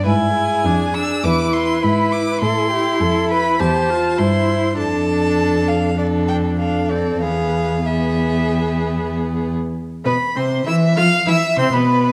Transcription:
0.05 G#2 E4 B4 G#5
0.34 G#4
0.64 F2 D4
0.94 D4 E6
1.24 E2 E4 B4 D6
1.53 C6
1.83 G#2 E4 B4 B5
2.12 D6
2.41 A2 E4 A4 C6
2.71 G4
3.00 F2 A4
3.30 B4 B5
3.60 E2 G4 C5 A5
3.89 F4
4.18 G2 E4 C5 C6
4.77 F2 D4 A4 A5
5.68 F5
5.97 D4 A4 D5
6.28 G5
6.59 D4 A4 F5
6.90 C4 D5
7.21 E2 B3 G#4 F5
7.86 B3 G#4 E5
10.05 B2 B3 B4 B5
10.36 C3 C4 C5 C6
10.66 E3 E4 E5 E6
10.97 F3 F4 F5 F6
11.26 E3 E4 E5 E6
11.57 C3 C4 C5 C6
11.73 B2 B3 B4 B5

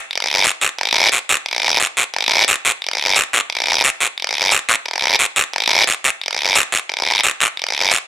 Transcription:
0.11 long guiro
0.44 short guiro
0.61 short guiro
0.79 long guiro
1.12 short guiro
1.29 short guiro
1.46 long guiro
1.80 short guiro
1.97 short guiro
2.14 long guiro
2.48 short guiro
2.65 short guiro
2.82 long guiro
3.16 short guiro
3.33 short guiro
3.50 long guiro
3.84 short guiro
4.00 short guiro
4.18 long guiro
4.51 short guiro
4.69 short guiro
4.86 long guiro
5.19 short guiro
5.36 short guiro
5.53 long guiro
5.87 short guiro
6.04 short guiro
6.21 long guiro
6.55 short guiro
6.72 short guiro
6.89 long guiro
7.23 short guiro
7.40 short guiro
7.57 long guiro
7.91 short guiro

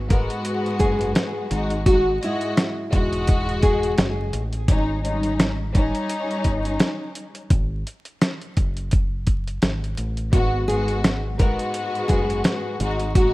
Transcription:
Already playing: G#1
0.07 G#2 G#3 B3 F#4 A#4, kick, closed hi-hat
0.30 closed hi-hat
0.45 closed hi-hat
0.66 closed hi-hat
0.79 F#1 G#4, kick, closed hi-hat
1.01 closed hi-hat
1.15 snare, closed hi-hat
1.50 G#1 G#2 G#3 D#4 F#4, closed hi-hat
1.70 closed hi-hat
1.85 G#2 G#3 D#4 F#4, kick, closed hi-hat
2.20 G#2 G#3 F#4 D#5, closed hi-hat
2.24 E4
2.41 closed hi-hat
2.57 snare, closed hi-hat
2.90 E1 G#2 G#3 F#4 D#5, kick, closed hi-hat
3.13 closed hi-hat
3.27 kick, closed hi-hat
3.49 closed hi-hat
3.62 G#4, kick, closed hi-hat
3.83 closed hi-hat
3.98 F#1, snare, closed hi-hat
4.33 A1, closed hi-hat
4.53 closed hi-hat
4.68 G#1 G3 C#4 D#4, kick, closed hi-hat
5.02 G3 C#4 D#4, closed hi-hat
5.23 closed hi-hat
5.40 snare, closed hi-hat
5.72 G3 C#4 D#4, kick, closed hi-hat
5.95 closed hi-hat
6.09 closed hi-hat
6.31 closed hi-hat
6.44 G1, kick, closed hi-hat
6.65 closed hi-hat
6.80 snare, closed hi-hat
7.15 closed hi-hat
7.35 closed hi-hat
7.50 G#1, kick, closed hi-hat
7.87 closed hi-hat
8.05 closed hi-hat
8.21 snare, closed hi-hat
8.42 closed hi-hat
8.57 F#1, kick, closed hi-hat
8.77 closed hi-hat
8.91 kick, closed hi-hat
9.27 kick, closed hi-hat
9.47 closed hi-hat
9.62 G#1, snare, closed hi-hat
9.84 closed hi-hat
9.97 A1, closed hi-hat
10.17 closed hi-hat
10.32 G#1 G#2 G#3 B3 F#4, kick, closed hi-hat
10.67 G#2 G#3 B3 F#4 G#4, closed hi-hat
10.88 closed hi-hat
11.04 snare, closed hi-hat
11.37 G#2 G#3 B3 F#4 A#4, kick, closed hi-hat
11.59 closed hi-hat
11.74 closed hi-hat
11.95 closed hi-hat
12.08 F#1 G#4, kick, closed hi-hat
12.30 closed hi-hat
12.44 snare, closed hi-hat
12.79 G#1 G#2 G#3 D#4 F#4, closed hi-hat
12.99 closed hi-hat
13.14 G#2 G#3 D#4 F#4, kick, closed hi-hat

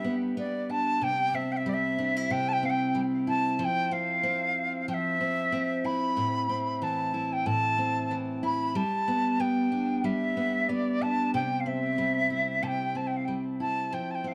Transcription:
Already playing: G3 D4 E5
0.04 B3
0.37 B3 D5
0.69 D4 A5
1.01 C3 G5
1.34 C4 E5
1.52 G5
1.57 E5
1.66 G3 D5
1.74 E5
1.98 D4
2.16 E4
2.30 C3 G5
2.48 A5
2.53 G5
2.63 C4 F5
2.70 G5
2.95 G3
3.27 E4 A5
3.59 F3 A5
3.64 G5
3.91 C4 F5
4.23 C4
4.88 F3 G5
4.94 E5
5.21 C4
5.52 C4
5.84 E4 B5
6.17 A2
6.49 C4
6.82 E3 A5
7.14 E4
7.33 G5
7.46 A2 A5
7.78 C4
8.11 E3
8.43 E4 B5
8.75 G3 A5
9.08 B3
9.40 B3 G5
9.72 D4
10.04 G3 E5
10.37 B3
10.69 B3 D5
11.01 D4 A5
11.34 C3 G5
11.60 F5
11.66 C4 E5
11.98 G3
12.30 E4
12.63 C3 A5
12.68 G5
12.95 C4 A5
13.07 G5
13.17 F5
13.25 G3 G5
13.60 E4 A5
13.92 F3 G5
14.11 A5
14.15 G5
14.24 C4 F5

